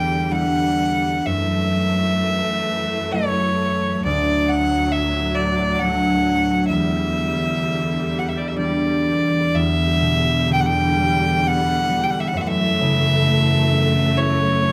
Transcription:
Already playing: E2 D3 G3 D4 G5
0.30 G3 D4 E4 F#5
1.25 F#2 E3 A3 E5
3.12 F#3 A3 E4 C#5
4.04 D2 A2 F#3 D5
4.49 F#5
4.92 E5
5.35 D5
5.79 F#3 A3 D4 F#5
6.68 E2 D3 G3 E5
8.19 F#5
8.29 E5
8.38 D5
8.48 E5
8.56 E3 G3 D4 D5
9.54 E2 D3 G3 E5
10.01 B2
10.50 D3 G5
10.60 F#5
10.66 G5
10.97 G3
11.44 B3 F#5
11.89 G3
12.04 G5
12.10 F#5
12.20 E5
12.28 F#5
12.33 F#2 E3 A3 E5
12.41 F#5
12.48 E5
12.81 C#3
13.27 A3
13.71 C#4
14.17 E4 C#5
14.62 C#4

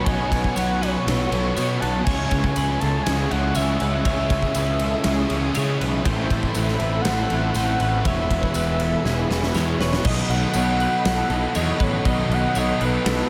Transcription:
Already playing: B4 C#5 F#5 C#6
0.05 B1 B2 F#3 B3 D#5 G#5, kick, ride
0.09 C#4 F#4
0.31 F#3 B3, kick, ride
0.44 kick
0.55 B1 B2 F#3 B3 C#4 F#4 C#5 F#5, ride, tambourine
0.81 F#3 B3 B4 C#5, ride
1.06 B1 B2 F#3 B3 C#4 A4, snare, ride
1.10 F#4
1.31 B1 F#3 B3, ride
1.35 B2
1.56 B2 F#3 B3 C#5, ride, tambourine
1.60 C#4 F#4
1.80 B1 B3 B4 A5, ride
1.86 F#3
2.03 C#2 G#4 C#5 E5 G#5, kick, crash
2.07 C#3 G#3 C#4 E4
2.31 C#2 G#3 C#4, kick, ride
2.44 kick
2.52 C#3 G#5, ride, tambourine
2.57 C#2 G#3 C#4 E4 B4
2.80 C#2 C#4 A4 A5, ride
2.84 G#3
3.03 C#2 C#3 G#4 G#5, snare, ride
3.08 G#3 C#4 E4
3.31 C#2 C#3 G#3 C#4 F#5, ride
3.55 C#2 C#3 G#3 C#4 C#5 E5, ride, tambourine
3.59 E4
3.80 C#2 G#3 C#4 B4, ride
4.04 C#2 C#3 G#3 C#4 C#5 E5 D#6, kick, ride
4.09 E4
4.30 G#3 C#4, kick, ride
4.42 kick
4.54 C#2 C#3 G#3 C#4 E4 B4, ride, tambourine
4.79 C#4 A4, ride
4.84 G#3
5.04 C#2 C#3 G#3 C#4 G#4, snare, ride
5.08 E4
5.29 C#2 C#3 G#3 C#4, ride
5.54 C#3 G#3 C#4 C#5, ride, tambourine
5.58 E4
5.80 B1 G#3 C#4 B4, ride
6.03 A1 A2 E3 A3 C4 A4 C5 B5, kick, ride
6.08 E4
6.29 A1 E3 A3, kick, ride
6.43 kick
6.53 A1 A2 E3 A3 C4 E4 B4, ride, tambourine
6.68 snare
6.77 A1 A3 E5, ride
6.82 E3 B4
7.01 A1 A2 E3 A3 F#5, snare, ride
7.06 C4 E4 A4
7.29 A1 E3 A3, ride
7.33 A2
7.54 A1 A2 E3 A3 C4 C5, ride, tambourine
7.58 E4
7.78 A1 E3 A3 B4, ride
8.03 E1 E2 B2 E3 G#3 G#4 B4 C#5 E5 B5, kick, ride
8.08 B3 E4
8.30 B2 E3, kick, ride
8.43 kick
8.54 E1 E2 B2 E3 G#3 B4, ride, tambourine
8.58 B3 E4
8.79 B2 E3 A4, ride
9.05 E1 E2 B2 E3 G#3 B3 G#4, snare
9.09 E4
9.30 E1 E2 B2 E3, snare
9.43 snare
9.54 E2 B2 E3 G#3 B3 C#5, snare, tambourine
9.58 E4
9.79 E1 E3 B4 C#5, snare
9.83 B2
9.93 snare
10.04 B1 B2 D#3 F#3 B3 A4 D#5 F#5 B5, kick, crash
10.08 D#4 A4
10.29 B1 D#4 A4 F#5, crash
10.33 F#3 B3
10.54 B1 B2 F#3 B3 D#4 C#5, tambourine, crash
10.58 A4
10.79 B3 B4 F#5, crash
10.84 F#3
11.05 B1 A4 F#5, snare, crash
11.29 B1 B3 D#4 A4, crash
11.34 F#3
11.54 E2 B2 D#3 F#3 B3 D#4 A4 C#5 D#5, tambourine, crash
11.79 A1 F#3 B3 D#4 A4 B4 C#5, kick, crash
12.03 B1 B2 D#3 F#3 B3 D#4 A4 D#5, kick, crash
12.09 D#5
12.28 B1 B3 D#4 A4, crash
12.32 F#3 B3 F#5
12.54 B1 B2 F#3 B3 D#4 C#5 D#5, tambourine, crash
12.58 A4
12.80 B1 F#3 B3 B4, crash
12.85 B4
13.05 B1 A4, snare, crash

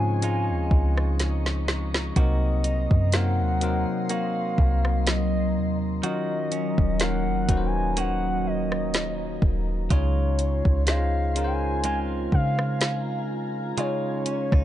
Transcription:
Already playing: G#2 C#3 F3 G#3 C4 C#4 D#4 F4 G#4 D#5 G#5 C6 C#6
0.22 G#3 D#4 F4 A#5, closed hi-hat
0.50 D#2
0.71 C#2, kick
0.97 cross-stick
1.20 snare, closed hi-hat
1.46 snare
1.68 snare
1.94 snare
2.16 C2 C3 F#3 A#3 C4 D#4 F#4 A#4 D#5 C6, kick, closed hi-hat
2.64 D#4, closed hi-hat
2.91 F#2, kick
3.12 F#3 A#3 C4 D#4 A#4 F#5, snare, closed hi-hat
3.40 D#2
3.61 F#3 A#3 C4 D#4 A#4, closed hi-hat
4.09 A#3 D#4 F#4 F5, closed hi-hat
4.58 C2, kick
4.85 cross-stick
5.07 D#5, snare, closed hi-hat
5.56 D#2
6.03 D#3 F#3 C#4 D#4 F4 F#4 A#4 D#5, closed hi-hat
6.52 C#4, closed hi-hat
6.78 D#1, kick
7.00 F#3 A#3 C#4 D#4 F#4 A#4 F#5, snare, closed hi-hat
7.27 F1
7.48 D#1 F#3 C#4 D#4 F#4 B4, kick, closed hi-hat
7.57 C5
7.66 G#5
7.97 A#3 C#4 F#4 F#5, closed hi-hat
8.47 D#5
8.72 cross-stick
8.94 snare, closed hi-hat
9.42 D#1, kick
9.90 C#2 C#3 G#3 C#4 D#4 F4 C#5 F5 G#5 C6, kick, closed hi-hat
10.39 closed hi-hat
10.65 C#2, kick
10.87 G#3 C#4 D#4 F4 C5 F5, snare, closed hi-hat
11.36 G#3 C#4 D#4 F4 A#4, closed hi-hat
11.44 C5 G5
11.53 G#5
11.84 G#3 C4 F4 G#5 A#5, closed hi-hat
12.32 C#3 F5, kick
12.59 cross-stick
12.81 snare, closed hi-hat
13.77 C#3 G#3 C#4 D#4 F4 C#5 C6, closed hi-hat
14.26 C#4, closed hi-hat
14.52 C#2 D#4, kick, cross-stick

